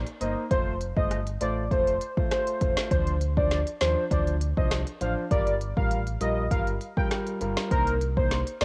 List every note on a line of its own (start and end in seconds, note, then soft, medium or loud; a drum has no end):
0.07 closed hi-hat medium
0.21 0.36 G1 loud
0.21 0.42 A#3 medium
0.21 0.42 D#4 medium
0.21 0.42 C5 medium
0.21 0.33 D#5 medium
0.21 closed hi-hat medium
0.51 0.93 F1 loud
0.51 0.72 A3 medium
0.51 0.72 F4 medium
0.51 0.74 C5 loud
0.51 0.72 C5 loud
0.51 kick loud
0.51 closed hi-hat medium
0.81 closed hi-hat medium
0.97 1.37 G1 loud
0.97 1.17 A3 medium
0.97 1.17 F4 medium
0.97 1.17 C5 medium
0.97 1.20 D#5 medium
0.97 kick loud
1.11 cross-stick medium
1.11 closed hi-hat medium
1.27 closed hi-hat medium
1.41 1.69 A1 loud
1.41 1.62 A3 medium
1.41 1.62 F4 medium
1.41 1.63 C5 medium
1.41 1.64 D5 medium
1.41 closed hi-hat medium
1.71 1.98 F1 loud
1.71 1.92 A3 medium
1.71 1.92 F4 medium
1.71 2.14 C5 loud
1.71 1.92 C5 loud
1.71 kick medium
1.71 closed hi-hat medium
1.87 closed hi-hat soft
2.01 closed hi-hat medium
2.17 2.58 A3 medium
2.17 2.58 F4 medium
2.17 2.58 C5 medium
2.17 kick loud
2.31 2.74 C5 loud
2.31 cross-stick loud
2.31 snare medium
2.31 closed hi-hat medium
2.47 closed hi-hat medium
2.61 2.76 F1 medium
2.61 2.89 A3 medium
2.61 2.89 F4 medium
2.61 2.89 C5 medium
2.61 kick medium
2.61 closed hi-hat medium
2.77 snare loud
2.91 3.63 D2 loud
2.91 3.12 F3 loud
2.91 3.12 D4 medium
2.91 3.14 C5 loud
2.91 3.13 C5 loud
2.91 kick loud
2.91 closed hi-hat medium
3.07 closed hi-hat medium
3.21 closed hi-hat medium
3.37 3.57 F3 medium
3.37 3.57 D4 medium
3.37 3.57 C5 medium
3.37 3.60 D5 medium
3.37 kick loud
3.51 snare medium
3.51 closed hi-hat medium
3.67 closed hi-hat medium
3.81 3.96 D#2 medium
3.81 4.02 F3 medium
3.81 4.02 D4 medium
3.81 4.04 C5 medium
3.81 4.03 C5 medium
3.81 snare loud
3.81 closed hi-hat medium
4.11 4.53 D2 loud
4.11 4.32 F3 medium
4.11 4.32 D4 medium
4.11 4.33 C5 loud
4.11 4.23 D5 medium
4.11 kick medium
4.11 closed hi-hat medium
4.27 closed hi-hat soft
4.41 closed hi-hat medium
4.57 4.84 C2 medium
4.57 4.77 F3 medium
4.57 4.77 D4 medium
4.57 4.77 C5 medium
4.57 4.68 D#5 medium
4.57 kick loud
4.71 cross-stick loud
4.71 snare loud
4.71 closed hi-hat medium
4.87 closed hi-hat medium
5.01 5.16 A1 loud
5.01 5.22 F3 medium
5.01 5.22 D4 medium
5.01 5.23 C5 medium
5.01 5.13 F5 medium
5.01 closed hi-hat medium
5.31 5.73 G1 loud
5.31 5.52 G3 medium
5.31 5.52 F4 medium
5.31 5.53 A#4 loud
5.31 5.54 D5 loud
5.31 kick loud
5.31 closed hi-hat medium
5.47 closed hi-hat medium
5.61 closed hi-hat medium
5.77 6.17 A1 loud
5.77 5.97 G3 medium
5.77 5.97 F4 medium
5.77 5.97 A#4 medium
5.77 6.00 F5 medium
5.77 kick loud
5.91 closed hi-hat medium
6.07 closed hi-hat medium
6.21 6.48 A#1 medium
6.21 6.42 G3 medium
6.21 6.42 F4 medium
6.21 6.42 A#4 medium
6.21 6.44 D#5 medium
6.21 closed hi-hat medium
6.51 6.78 G1 loud
6.51 6.72 G3 medium
6.51 6.72 F4 medium
6.51 6.72 A#4 loud
6.51 6.63 F5 medium
6.51 kick medium
6.51 closed hi-hat medium
6.67 closed hi-hat soft
6.81 closed hi-hat medium
6.97 7.38 G3 medium
6.97 7.38 F4 medium
6.97 7.38 A#4 medium
6.97 7.08 G5 medium
6.97 kick medium
7.11 cross-stick loud
7.11 snare medium
7.11 closed hi-hat medium
7.27 closed hi-hat medium
7.41 7.56 G1 medium
7.41 7.69 G3 medium
7.41 7.69 F4 medium
7.41 7.69 A#4 medium
7.41 closed hi-hat medium
7.57 snare loud
7.71 8.43 C2 loud
7.71 7.92 A#3 medium
7.71 7.92 D#4 medium
7.71 7.94 A#4 loud
7.71 7.93 C5 loud
7.71 kick loud
7.71 closed hi-hat medium
7.87 closed hi-hat medium
8.01 closed hi-hat medium
8.17 8.37 A#3 medium
8.17 8.37 D#4 medium
8.17 8.40 C5 medium
8.17 8.37 C5 medium
8.17 kick loud
8.31 snare medium
8.31 closed hi-hat medium
8.47 closed hi-hat medium
8.61 8.65 D2 loud
8.61 8.65 A#3 medium
8.61 8.65 D#4 medium
8.61 8.65 C5 medium
8.61 8.65 D5 medium
8.61 snare loud
8.61 closed hi-hat medium